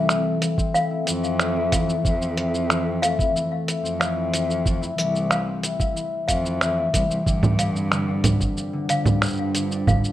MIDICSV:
0, 0, Header, 1, 6, 480
1, 0, Start_track
1, 0, Key_signature, -1, "major"
1, 0, Tempo, 652174
1, 1507, Time_signature, 4, 2, 24, 8
1, 7450, End_track
2, 0, Start_track
2, 0, Title_t, "Toy piano"
2, 0, Program_c, 0, 8
2, 548, Note_on_c, 0, 77, 94
2, 776, Note_off_c, 0, 77, 0
2, 1267, Note_on_c, 0, 77, 60
2, 1495, Note_off_c, 0, 77, 0
2, 2225, Note_on_c, 0, 77, 89
2, 2454, Note_off_c, 0, 77, 0
2, 2942, Note_on_c, 0, 77, 64
2, 3173, Note_off_c, 0, 77, 0
2, 3904, Note_on_c, 0, 77, 82
2, 4134, Note_off_c, 0, 77, 0
2, 4620, Note_on_c, 0, 77, 70
2, 4852, Note_off_c, 0, 77, 0
2, 5585, Note_on_c, 0, 77, 71
2, 5814, Note_off_c, 0, 77, 0
2, 6549, Note_on_c, 0, 77, 91
2, 6776, Note_off_c, 0, 77, 0
2, 7269, Note_on_c, 0, 77, 77
2, 7450, Note_off_c, 0, 77, 0
2, 7450, End_track
3, 0, Start_track
3, 0, Title_t, "Ambient pad"
3, 0, Program_c, 1, 92
3, 0, Note_on_c, 1, 60, 83
3, 0, Note_on_c, 1, 69, 69
3, 5347, Note_on_c, 1, 55, 75
3, 5381, Note_on_c, 1, 62, 80
3, 5820, Note_on_c, 1, 72, 75
3, 5829, Note_on_c, 1, 65, 84
3, 6391, Note_off_c, 1, 60, 0
3, 6395, Note_off_c, 1, 69, 0
3, 7450, Note_off_c, 1, 55, 0
3, 7450, Note_off_c, 1, 62, 0
3, 7450, Note_off_c, 1, 65, 0
3, 7450, Note_off_c, 1, 72, 0
3, 7450, End_track
4, 0, Start_track
4, 0, Title_t, "Harp"
4, 0, Program_c, 2, 46
4, 0, Note_on_c, 2, 57, 75
4, 0, Note_on_c, 2, 60, 65
4, 0, Note_on_c, 2, 64, 70
4, 67, Note_on_c, 2, 52, 90
4, 185, Note_off_c, 2, 57, 0
4, 187, Note_on_c, 2, 57, 63
4, 298, Note_off_c, 2, 52, 0
4, 307, Note_on_c, 2, 52, 67
4, 422, Note_off_c, 2, 60, 0
4, 425, Note_on_c, 2, 60, 67
4, 539, Note_off_c, 2, 52, 0
4, 548, Note_on_c, 2, 52, 72
4, 664, Note_off_c, 2, 64, 0
4, 667, Note_on_c, 2, 64, 70
4, 781, Note_off_c, 2, 52, 0
4, 790, Note_on_c, 2, 52, 76
4, 1027, Note_off_c, 2, 57, 0
4, 1030, Note_on_c, 2, 57, 72
4, 1143, Note_off_c, 2, 52, 0
4, 1152, Note_on_c, 2, 52, 96
4, 1261, Note_off_c, 2, 52, 0
4, 1270, Note_on_c, 2, 52, 94
4, 1390, Note_off_c, 2, 57, 0
4, 1393, Note_on_c, 2, 57, 65
4, 1501, Note_off_c, 2, 52, 0
4, 1510, Note_on_c, 2, 52, 72
4, 1625, Note_off_c, 2, 60, 0
4, 1628, Note_on_c, 2, 60, 73
4, 1739, Note_off_c, 2, 52, 0
4, 1747, Note_on_c, 2, 52, 77
4, 1863, Note_off_c, 2, 64, 0
4, 1866, Note_on_c, 2, 64, 74
4, 1977, Note_off_c, 2, 52, 0
4, 1986, Note_on_c, 2, 52, 76
4, 2227, Note_off_c, 2, 57, 0
4, 2229, Note_on_c, 2, 57, 70
4, 2339, Note_off_c, 2, 52, 0
4, 2348, Note_on_c, 2, 52, 81
4, 2461, Note_off_c, 2, 52, 0
4, 2469, Note_on_c, 2, 52, 87
4, 2582, Note_off_c, 2, 57, 0
4, 2585, Note_on_c, 2, 57, 66
4, 2696, Note_off_c, 2, 52, 0
4, 2705, Note_on_c, 2, 52, 68
4, 2819, Note_off_c, 2, 60, 0
4, 2822, Note_on_c, 2, 60, 71
4, 2935, Note_off_c, 2, 52, 0
4, 2943, Note_on_c, 2, 52, 82
4, 3061, Note_off_c, 2, 64, 0
4, 3064, Note_on_c, 2, 64, 63
4, 3178, Note_off_c, 2, 52, 0
4, 3186, Note_on_c, 2, 52, 72
4, 3422, Note_off_c, 2, 57, 0
4, 3425, Note_on_c, 2, 57, 74
4, 3534, Note_off_c, 2, 52, 0
4, 3543, Note_on_c, 2, 52, 90
4, 3656, Note_off_c, 2, 52, 0
4, 3665, Note_on_c, 2, 52, 100
4, 3782, Note_off_c, 2, 57, 0
4, 3785, Note_on_c, 2, 57, 70
4, 3896, Note_off_c, 2, 52, 0
4, 3905, Note_on_c, 2, 52, 75
4, 4022, Note_off_c, 2, 60, 0
4, 4025, Note_on_c, 2, 60, 64
4, 4138, Note_off_c, 2, 52, 0
4, 4147, Note_on_c, 2, 52, 66
4, 4259, Note_off_c, 2, 64, 0
4, 4262, Note_on_c, 2, 64, 65
4, 4374, Note_off_c, 2, 52, 0
4, 4383, Note_on_c, 2, 52, 72
4, 4622, Note_off_c, 2, 57, 0
4, 4625, Note_on_c, 2, 57, 68
4, 4732, Note_off_c, 2, 52, 0
4, 4741, Note_on_c, 2, 52, 91
4, 4853, Note_off_c, 2, 52, 0
4, 4862, Note_on_c, 2, 52, 90
4, 4981, Note_off_c, 2, 57, 0
4, 4984, Note_on_c, 2, 57, 62
4, 5091, Note_off_c, 2, 52, 0
4, 5100, Note_on_c, 2, 52, 72
4, 5222, Note_off_c, 2, 60, 0
4, 5224, Note_on_c, 2, 60, 68
4, 5346, Note_on_c, 2, 50, 87
4, 5384, Note_off_c, 2, 52, 0
4, 5465, Note_on_c, 2, 55, 74
4, 5578, Note_off_c, 2, 50, 0
4, 5587, Note_on_c, 2, 50, 74
4, 5624, Note_off_c, 2, 55, 0
4, 5702, Note_off_c, 2, 60, 0
4, 5705, Note_on_c, 2, 60, 72
4, 5816, Note_off_c, 2, 50, 0
4, 5825, Note_on_c, 2, 50, 75
4, 5943, Note_on_c, 2, 62, 67
4, 6057, Note_off_c, 2, 50, 0
4, 6066, Note_on_c, 2, 50, 72
4, 6185, Note_off_c, 2, 64, 0
4, 6307, Note_on_c, 2, 55, 72
4, 6418, Note_off_c, 2, 50, 0
4, 6427, Note_on_c, 2, 50, 92
4, 6464, Note_off_c, 2, 55, 0
4, 6536, Note_off_c, 2, 50, 0
4, 6545, Note_on_c, 2, 50, 93
4, 6667, Note_on_c, 2, 55, 69
4, 6778, Note_off_c, 2, 50, 0
4, 6787, Note_on_c, 2, 50, 77
4, 6824, Note_off_c, 2, 55, 0
4, 6906, Note_off_c, 2, 60, 0
4, 6909, Note_on_c, 2, 60, 66
4, 7021, Note_off_c, 2, 50, 0
4, 7029, Note_on_c, 2, 50, 68
4, 7146, Note_off_c, 2, 62, 0
4, 7149, Note_on_c, 2, 62, 71
4, 7265, Note_off_c, 2, 50, 0
4, 7274, Note_on_c, 2, 50, 75
4, 7434, Note_off_c, 2, 57, 0
4, 7450, Note_off_c, 2, 50, 0
4, 7450, Note_off_c, 2, 60, 0
4, 7450, Note_off_c, 2, 62, 0
4, 7450, End_track
5, 0, Start_track
5, 0, Title_t, "Cello"
5, 0, Program_c, 3, 42
5, 0, Note_on_c, 3, 36, 76
5, 270, Note_off_c, 3, 36, 0
5, 786, Note_on_c, 3, 41, 91
5, 1471, Note_off_c, 3, 41, 0
5, 1508, Note_on_c, 3, 41, 91
5, 2552, Note_off_c, 3, 41, 0
5, 2825, Note_on_c, 3, 41, 84
5, 3631, Note_off_c, 3, 41, 0
5, 3667, Note_on_c, 3, 36, 82
5, 4112, Note_off_c, 3, 36, 0
5, 4628, Note_on_c, 3, 41, 88
5, 5101, Note_off_c, 3, 41, 0
5, 5106, Note_on_c, 3, 36, 83
5, 5204, Note_off_c, 3, 36, 0
5, 5223, Note_on_c, 3, 36, 79
5, 5323, Note_off_c, 3, 36, 0
5, 5346, Note_on_c, 3, 43, 96
5, 6391, Note_off_c, 3, 43, 0
5, 6667, Note_on_c, 3, 43, 80
5, 7450, Note_off_c, 3, 43, 0
5, 7450, End_track
6, 0, Start_track
6, 0, Title_t, "Drums"
6, 67, Note_on_c, 9, 26, 84
6, 72, Note_on_c, 9, 82, 41
6, 141, Note_off_c, 9, 26, 0
6, 146, Note_off_c, 9, 82, 0
6, 308, Note_on_c, 9, 42, 78
6, 313, Note_on_c, 9, 82, 72
6, 382, Note_off_c, 9, 42, 0
6, 387, Note_off_c, 9, 82, 0
6, 426, Note_on_c, 9, 36, 90
6, 433, Note_on_c, 9, 82, 33
6, 500, Note_off_c, 9, 36, 0
6, 506, Note_off_c, 9, 82, 0
6, 553, Note_on_c, 9, 82, 45
6, 627, Note_off_c, 9, 82, 0
6, 787, Note_on_c, 9, 42, 76
6, 793, Note_on_c, 9, 82, 73
6, 861, Note_off_c, 9, 42, 0
6, 866, Note_off_c, 9, 82, 0
6, 912, Note_on_c, 9, 82, 32
6, 986, Note_off_c, 9, 82, 0
6, 1027, Note_on_c, 9, 26, 93
6, 1032, Note_on_c, 9, 82, 39
6, 1100, Note_off_c, 9, 26, 0
6, 1106, Note_off_c, 9, 82, 0
6, 1267, Note_on_c, 9, 36, 98
6, 1268, Note_on_c, 9, 42, 80
6, 1274, Note_on_c, 9, 82, 71
6, 1341, Note_off_c, 9, 36, 0
6, 1342, Note_off_c, 9, 42, 0
6, 1347, Note_off_c, 9, 82, 0
6, 1394, Note_on_c, 9, 82, 32
6, 1467, Note_off_c, 9, 82, 0
6, 1508, Note_on_c, 9, 36, 109
6, 1513, Note_on_c, 9, 82, 42
6, 1581, Note_off_c, 9, 36, 0
6, 1587, Note_off_c, 9, 82, 0
6, 1634, Note_on_c, 9, 82, 28
6, 1707, Note_off_c, 9, 82, 0
6, 1748, Note_on_c, 9, 42, 71
6, 1821, Note_off_c, 9, 42, 0
6, 1873, Note_on_c, 9, 82, 30
6, 1947, Note_off_c, 9, 82, 0
6, 1988, Note_on_c, 9, 26, 89
6, 1993, Note_on_c, 9, 82, 40
6, 2062, Note_off_c, 9, 26, 0
6, 2067, Note_off_c, 9, 82, 0
6, 2230, Note_on_c, 9, 42, 80
6, 2235, Note_on_c, 9, 82, 71
6, 2304, Note_off_c, 9, 42, 0
6, 2309, Note_off_c, 9, 82, 0
6, 2348, Note_on_c, 9, 36, 100
6, 2356, Note_on_c, 9, 82, 34
6, 2422, Note_off_c, 9, 36, 0
6, 2430, Note_off_c, 9, 82, 0
6, 2476, Note_on_c, 9, 82, 40
6, 2550, Note_off_c, 9, 82, 0
6, 2711, Note_on_c, 9, 42, 80
6, 2716, Note_on_c, 9, 82, 69
6, 2784, Note_off_c, 9, 42, 0
6, 2789, Note_off_c, 9, 82, 0
6, 2837, Note_on_c, 9, 82, 32
6, 2910, Note_off_c, 9, 82, 0
6, 2950, Note_on_c, 9, 26, 94
6, 2956, Note_on_c, 9, 82, 39
6, 3024, Note_off_c, 9, 26, 0
6, 3029, Note_off_c, 9, 82, 0
6, 3191, Note_on_c, 9, 42, 78
6, 3196, Note_on_c, 9, 82, 69
6, 3265, Note_off_c, 9, 42, 0
6, 3270, Note_off_c, 9, 82, 0
6, 3315, Note_on_c, 9, 82, 35
6, 3389, Note_off_c, 9, 82, 0
6, 3427, Note_on_c, 9, 36, 109
6, 3433, Note_on_c, 9, 82, 42
6, 3501, Note_off_c, 9, 36, 0
6, 3506, Note_off_c, 9, 82, 0
6, 3554, Note_on_c, 9, 82, 31
6, 3627, Note_off_c, 9, 82, 0
6, 3668, Note_on_c, 9, 42, 72
6, 3673, Note_on_c, 9, 82, 69
6, 3742, Note_off_c, 9, 42, 0
6, 3747, Note_off_c, 9, 82, 0
6, 3794, Note_on_c, 9, 82, 29
6, 3868, Note_off_c, 9, 82, 0
6, 3906, Note_on_c, 9, 26, 84
6, 3911, Note_on_c, 9, 82, 40
6, 3980, Note_off_c, 9, 26, 0
6, 3985, Note_off_c, 9, 82, 0
6, 4147, Note_on_c, 9, 42, 74
6, 4152, Note_on_c, 9, 82, 74
6, 4221, Note_off_c, 9, 42, 0
6, 4226, Note_off_c, 9, 82, 0
6, 4267, Note_on_c, 9, 36, 97
6, 4272, Note_on_c, 9, 82, 33
6, 4340, Note_off_c, 9, 36, 0
6, 4346, Note_off_c, 9, 82, 0
6, 4393, Note_on_c, 9, 82, 43
6, 4466, Note_off_c, 9, 82, 0
6, 4626, Note_on_c, 9, 42, 70
6, 4627, Note_on_c, 9, 36, 61
6, 4631, Note_on_c, 9, 82, 72
6, 4700, Note_off_c, 9, 42, 0
6, 4701, Note_off_c, 9, 36, 0
6, 4705, Note_off_c, 9, 82, 0
6, 4752, Note_on_c, 9, 82, 34
6, 4826, Note_off_c, 9, 82, 0
6, 4867, Note_on_c, 9, 26, 93
6, 4872, Note_on_c, 9, 82, 39
6, 4941, Note_off_c, 9, 26, 0
6, 4946, Note_off_c, 9, 82, 0
6, 5106, Note_on_c, 9, 36, 96
6, 5108, Note_on_c, 9, 42, 73
6, 5113, Note_on_c, 9, 82, 76
6, 5180, Note_off_c, 9, 36, 0
6, 5181, Note_off_c, 9, 42, 0
6, 5186, Note_off_c, 9, 82, 0
6, 5232, Note_on_c, 9, 82, 31
6, 5306, Note_off_c, 9, 82, 0
6, 5347, Note_on_c, 9, 36, 110
6, 5353, Note_on_c, 9, 82, 42
6, 5420, Note_off_c, 9, 36, 0
6, 5426, Note_off_c, 9, 82, 0
6, 5467, Note_on_c, 9, 64, 73
6, 5473, Note_on_c, 9, 82, 30
6, 5541, Note_off_c, 9, 64, 0
6, 5546, Note_off_c, 9, 82, 0
6, 5585, Note_on_c, 9, 42, 73
6, 5590, Note_on_c, 9, 82, 68
6, 5659, Note_off_c, 9, 42, 0
6, 5664, Note_off_c, 9, 82, 0
6, 5712, Note_on_c, 9, 82, 29
6, 5786, Note_off_c, 9, 82, 0
6, 5826, Note_on_c, 9, 26, 84
6, 5831, Note_on_c, 9, 82, 43
6, 5900, Note_off_c, 9, 26, 0
6, 5905, Note_off_c, 9, 82, 0
6, 6064, Note_on_c, 9, 42, 77
6, 6064, Note_on_c, 9, 64, 75
6, 6069, Note_on_c, 9, 82, 66
6, 6138, Note_off_c, 9, 42, 0
6, 6138, Note_off_c, 9, 64, 0
6, 6143, Note_off_c, 9, 82, 0
6, 6187, Note_on_c, 9, 36, 93
6, 6190, Note_on_c, 9, 82, 33
6, 6260, Note_off_c, 9, 36, 0
6, 6263, Note_off_c, 9, 82, 0
6, 6310, Note_on_c, 9, 82, 39
6, 6384, Note_off_c, 9, 82, 0
6, 6544, Note_on_c, 9, 42, 78
6, 6549, Note_on_c, 9, 82, 71
6, 6618, Note_off_c, 9, 42, 0
6, 6623, Note_off_c, 9, 82, 0
6, 6665, Note_on_c, 9, 64, 73
6, 6670, Note_on_c, 9, 82, 32
6, 6738, Note_off_c, 9, 64, 0
6, 6744, Note_off_c, 9, 82, 0
6, 6785, Note_on_c, 9, 26, 81
6, 6790, Note_on_c, 9, 82, 41
6, 6810, Note_off_c, 9, 82, 0
6, 6810, Note_on_c, 9, 82, 30
6, 6828, Note_off_c, 9, 82, 0
6, 6828, Note_on_c, 9, 82, 27
6, 6844, Note_off_c, 9, 82, 0
6, 6844, Note_on_c, 9, 82, 22
6, 6859, Note_off_c, 9, 26, 0
6, 6863, Note_off_c, 9, 82, 0
6, 6863, Note_on_c, 9, 82, 17
6, 6879, Note_off_c, 9, 82, 0
6, 6879, Note_on_c, 9, 82, 14
6, 6895, Note_off_c, 9, 82, 0
6, 6895, Note_on_c, 9, 82, 12
6, 6968, Note_off_c, 9, 82, 0
6, 7026, Note_on_c, 9, 42, 72
6, 7031, Note_on_c, 9, 82, 71
6, 7100, Note_off_c, 9, 42, 0
6, 7105, Note_off_c, 9, 82, 0
6, 7152, Note_on_c, 9, 82, 33
6, 7226, Note_off_c, 9, 82, 0
6, 7267, Note_on_c, 9, 64, 74
6, 7268, Note_on_c, 9, 36, 102
6, 7272, Note_on_c, 9, 82, 39
6, 7341, Note_off_c, 9, 64, 0
6, 7342, Note_off_c, 9, 36, 0
6, 7346, Note_off_c, 9, 82, 0
6, 7392, Note_on_c, 9, 82, 29
6, 7450, Note_off_c, 9, 82, 0
6, 7450, End_track
0, 0, End_of_file